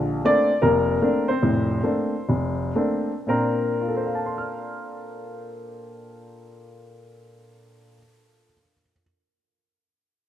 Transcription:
Already playing: A#1 D3
0.25 A3 A#3 C4 D4 D5
0.62 F1 A#3 A#4
1.02 A3 A#3 C4 D4
1.28 C4 C5
1.42 F1 A2
1.83 A3 A#3 C4 D4
2.29 F1
2.76 A3 A#3 C4 D4
3.27 A#2 A#3 C4 D4 A#4
3.81 F4
3.88 A4
3.97 C5
4.06 F5
4.15 A5
4.26 C6
4.38 F6

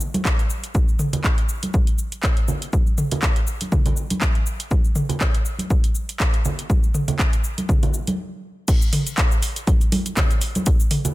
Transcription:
0.01 shaker
0.14 closed hi-hat, high conga, shaker
0.25 kick, clap, shaker
0.39 closed hi-hat, shaker
0.50 shaker
0.64 closed hi-hat, shaker
0.74 kick, high conga, shaker
0.88 shaker
0.99 mid tom, shaker
1.13 closed hi-hat, low conga, shaker
1.24 kick, clap, shaker
1.38 closed hi-hat
1.49 shaker
1.63 closed hi-hat, high conga, shaker
1.74 kick, high conga, shaker
1.87 closed hi-hat, shaker
1.98 shaker
2.12 closed hi-hat, shaker
2.23 kick, clap, shaker
2.37 closed hi-hat
2.48 low conga, shaker
2.62 closed hi-hat, shaker
2.73 kick, high conga, shaker
2.87 shaker
2.98 mid tom, shaker
3.11 closed hi-hat, low conga, shaker
3.22 kick, clap, shaker
3.36 closed hi-hat
3.47 shaker
3.61 closed hi-hat, high conga, shaker
3.72 kick, mid tom, high conga, shaker
3.86 closed hi-hat, low conga, shaker
3.96 shaker
4.10 closed hi-hat, high conga, shaker
4.21 kick, clap, shaker
4.35 closed hi-hat
4.46 shaker
4.60 closed hi-hat, shaker
4.71 kick, high conga, shaker
4.84 shaker
4.95 mid tom, shaker
5.09 closed hi-hat, low conga, shaker
5.21 kick, clap, shaker
5.34 closed hi-hat
5.45 shaker
5.58 closed hi-hat, high conga, shaker
5.70 kick, high conga, shaker
5.84 closed hi-hat, shaker
5.95 shaker
6.09 closed hi-hat, shaker
6.20 kick, clap, shaker
6.34 closed hi-hat
6.45 low conga, shaker
6.59 closed hi-hat, shaker
6.70 kick, high conga, shaker
6.83 shaker
6.94 mid tom, shaker
7.08 closed hi-hat, low conga, shaker
7.19 kick, clap, shaker
7.33 closed hi-hat, shaker
7.44 shaker
7.58 closed hi-hat, high conga, shaker
7.69 kick, mid tom, high conga, shaker
7.83 closed hi-hat, low conga, shaker
7.94 shaker
8.07 closed hi-hat, high conga, shaker
8.68 kick, closed hi-hat, crash, shaker
8.82 shaker
8.93 open hi-hat, mid tom, shaker
9.07 closed hi-hat, shaker
9.18 kick, clap, closed hi-hat, shaker
9.32 shaker
9.42 open hi-hat, shaker
9.56 closed hi-hat, shaker
9.67 kick, closed hi-hat, high conga, shaker
9.81 closed hi-hat, shaker
9.92 open hi-hat, high conga, shaker
10.06 closed hi-hat, shaker
10.17 kick, clap, closed hi-hat, low conga, shaker
10.31 closed hi-hat, shaker
10.41 open hi-hat, shaker
10.55 closed hi-hat, high conga, shaker
10.66 kick, closed hi-hat, shaker
10.80 shaker
10.91 open hi-hat, mid tom, shaker
11.05 closed hi-hat, low conga, shaker

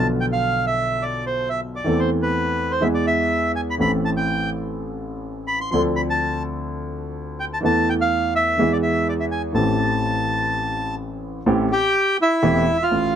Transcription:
Already playing: B1 B2 D3 F3 B3 F4
0.21 G5
0.32 F5
0.67 E5
1.02 D5
1.26 C5
1.49 E5
1.76 D5
1.84 E2 E3 A3 C4
1.89 A4
1.99 C5
2.22 B4
2.71 C5
2.81 E2 E3 G#3 B3 G#4 E5
2.94 D5
3.07 E5
3.56 G#5
3.70 B5
3.78 A1 A2 E3 A3 C4 A4 B5
4.05 A5
4.17 G5
5.47 B5
5.61 C6
5.71 D2 D3 F3 C4 D4 A4 C6
5.96 B5
6.10 A5
7.40 G5
7.54 A5
7.63 E2 E3 A3 B3 A4 A5
7.89 G5
8.01 F5
8.35 E5
8.57 E2 E3 G#3 B3 G#4
8.72 D5
8.83 E5
9.09 D5
9.20 E5
9.31 G#5
9.53 A1 A2 E3 A3 C4 G4 A5
11.46 A1 A2 E3 A3 C4 G4
11.72 G4 G5
12.22 E4 E5
12.42 E1 E2 E3 A3 C4 G4
12.83 F4 F5
12.91 A1 A2

